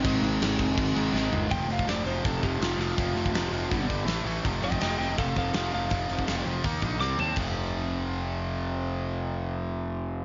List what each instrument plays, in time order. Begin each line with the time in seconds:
Already playing: lead electric guitar C4
0.03 picked electric bass G#1, distorted electric guitar G#2 D#3 G#3, kick, crash
0.22 picked electric bass G#1, crash
0.41 picked electric bass G#1, snare, crash
0.58 picked electric bass F1, distorted electric guitar D#3 G#3, kick, crash
0.63 distorted electric guitar G#2
0.77 picked electric bass G#1, kick, crash
0.95 picked electric bass G#1, distorted electric guitar G#2 D#3 G#3, crash
1.13 picked electric bass G#1, distorted electric guitar G#2 D#3 G#3, snare
1.32 picked electric bass G1, floor tom
1.50 picked electric bass F1, distorted electric guitar F2 C3 F3, lead electric guitar G5, kick, open hi-hat
1.69 picked electric bass F1, distorted electric guitar F2 C3 F3, lead electric guitar F5, open hi-hat
1.79 kick
1.86 picked electric bass F1, distorted electric guitar F2 C3 F3, lead electric guitar D5, snare, open hi-hat
2.04 picked electric bass F1, distorted electric guitar F2 C3 F3, lead electric guitar C5, open hi-hat
2.23 picked electric bass F1, distorted electric guitar F2 C3 F3, lead electric guitar A4, kick, open hi-hat
2.42 picked electric bass F1, distorted electric guitar F2 C3 F3, lead electric guitar G4, kick, open hi-hat
2.59 picked electric bass F1, distorted electric guitar F2 C3 F3, lead electric guitar F4, snare, open hi-hat
2.77 picked electric bass F1, distorted electric guitar F2 C3 F3, lead electric guitar F4, open hi-hat
2.97 picked electric bass F1, distorted electric guitar F2 C3 F3, kick, open hi-hat
3.15 picked electric bass F1, distorted electric guitar F2 C3 F3, open hi-hat
3.26 kick
3.32 picked electric bass F1, distorted electric guitar F2 C3 F3, snare, open hi-hat
3.51 picked electric bass F1, distorted electric guitar F2 C3 F3, open hi-hat
3.70 picked electric bass G1, distorted electric guitar G2 D3 G3, kick, open hi-hat
3.87 picked electric bass G1, distorted electric guitar G2 D3 G3, kick, open hi-hat
4.05 picked electric bass A1, distorted electric guitar A2 E3 A3, snare, open hi-hat
4.24 picked electric bass A1, distorted electric guitar A2 E3 A3, open hi-hat
4.43 picked electric bass F1, distorted electric guitar F2 C3 F3, kick, open hi-hat
4.61 picked electric bass F1, distorted electric guitar F2 C3 F3, lead electric guitar D#5 G5, open hi-hat
4.72 kick
4.81 picked electric bass F1, distorted electric guitar F2 C3 F3, lead electric guitar D#5 G5, snare, open hi-hat
4.98 picked electric bass F1, distorted electric guitar F2 C3 F3, lead electric guitar D#5 G5, open hi-hat
5.17 picked electric bass F1, distorted electric guitar F2 C3 F3, lead electric guitar A4 F5, kick, open hi-hat
5.36 picked electric bass F1, distorted electric guitar F2 C3 F3, lead electric guitar A4 F5, kick, open hi-hat
5.53 picked electric bass F1, distorted electric guitar F2 C3 F3, lead electric guitar A4 F5, snare, open hi-hat
5.71 picked electric bass F1, distorted electric guitar F2 C3 F3, lead electric guitar F5, open hi-hat
5.90 picked electric bass F1, distorted electric guitar F2 C3 F3, kick, open hi-hat
6.09 picked electric bass F1, distorted electric guitar F2 C3 F3, open hi-hat
6.19 kick
6.27 picked electric bass F1, distorted electric guitar F2 C3 F3, snare, open hi-hat
6.46 picked electric bass F1, distorted electric guitar F2 C3 F3, open hi-hat
6.64 picked electric bass D#2, distorted electric guitar D#3 A#3 D#4, kick, open hi-hat
6.82 picked electric bass A#1, distorted electric guitar D#3 A#3 D#4, kick, open hi-hat
7.00 picked electric bass C2, distorted electric guitar C3 G3 C4, lead electric guitar D6, snare
7.17 picked electric bass D#2, distorted electric guitar C3 G3 C4, lead electric guitar A5, floor tom
7.36 picked electric bass F1, distorted electric guitar F2 C3 F3, kick, crash